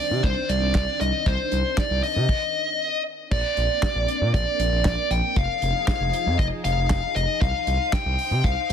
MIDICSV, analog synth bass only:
0, 0, Header, 1, 2, 480
1, 0, Start_track
1, 0, Tempo, 512821
1, 1181, Time_signature, 4, 2, 24, 8
1, 8170, End_track
2, 0, Start_track
2, 0, Title_t, "Analog synth bass"
2, 0, Program_c, 0, 38
2, 101, Note_on_c, 0, 48, 99
2, 202, Note_off_c, 0, 48, 0
2, 222, Note_on_c, 0, 36, 101
2, 322, Note_off_c, 0, 36, 0
2, 462, Note_on_c, 0, 36, 100
2, 562, Note_off_c, 0, 36, 0
2, 581, Note_on_c, 0, 36, 106
2, 682, Note_off_c, 0, 36, 0
2, 702, Note_on_c, 0, 36, 108
2, 802, Note_off_c, 0, 36, 0
2, 943, Note_on_c, 0, 36, 106
2, 1043, Note_off_c, 0, 36, 0
2, 1182, Note_on_c, 0, 36, 106
2, 1282, Note_off_c, 0, 36, 0
2, 1425, Note_on_c, 0, 36, 99
2, 1524, Note_off_c, 0, 36, 0
2, 1784, Note_on_c, 0, 36, 95
2, 1884, Note_off_c, 0, 36, 0
2, 2024, Note_on_c, 0, 48, 100
2, 2124, Note_off_c, 0, 48, 0
2, 3103, Note_on_c, 0, 34, 107
2, 3203, Note_off_c, 0, 34, 0
2, 3343, Note_on_c, 0, 34, 92
2, 3443, Note_off_c, 0, 34, 0
2, 3703, Note_on_c, 0, 34, 99
2, 3803, Note_off_c, 0, 34, 0
2, 3942, Note_on_c, 0, 46, 100
2, 4043, Note_off_c, 0, 46, 0
2, 4064, Note_on_c, 0, 34, 107
2, 4163, Note_off_c, 0, 34, 0
2, 4300, Note_on_c, 0, 34, 105
2, 4401, Note_off_c, 0, 34, 0
2, 4422, Note_on_c, 0, 34, 101
2, 4522, Note_off_c, 0, 34, 0
2, 4542, Note_on_c, 0, 34, 112
2, 4642, Note_off_c, 0, 34, 0
2, 4780, Note_on_c, 0, 34, 107
2, 4881, Note_off_c, 0, 34, 0
2, 5021, Note_on_c, 0, 29, 105
2, 5122, Note_off_c, 0, 29, 0
2, 5261, Note_on_c, 0, 29, 99
2, 5362, Note_off_c, 0, 29, 0
2, 5621, Note_on_c, 0, 29, 100
2, 5722, Note_off_c, 0, 29, 0
2, 5861, Note_on_c, 0, 41, 103
2, 5962, Note_off_c, 0, 41, 0
2, 5981, Note_on_c, 0, 29, 109
2, 6082, Note_off_c, 0, 29, 0
2, 6220, Note_on_c, 0, 29, 106
2, 6321, Note_off_c, 0, 29, 0
2, 6340, Note_on_c, 0, 29, 105
2, 6441, Note_off_c, 0, 29, 0
2, 6461, Note_on_c, 0, 29, 107
2, 6562, Note_off_c, 0, 29, 0
2, 6700, Note_on_c, 0, 29, 109
2, 6801, Note_off_c, 0, 29, 0
2, 6941, Note_on_c, 0, 36, 108
2, 7042, Note_off_c, 0, 36, 0
2, 7180, Note_on_c, 0, 36, 103
2, 7281, Note_off_c, 0, 36, 0
2, 7541, Note_on_c, 0, 36, 106
2, 7642, Note_off_c, 0, 36, 0
2, 7779, Note_on_c, 0, 48, 99
2, 7881, Note_off_c, 0, 48, 0
2, 7902, Note_on_c, 0, 36, 106
2, 8003, Note_off_c, 0, 36, 0
2, 8141, Note_on_c, 0, 36, 99
2, 8170, Note_off_c, 0, 36, 0
2, 8170, End_track
0, 0, End_of_file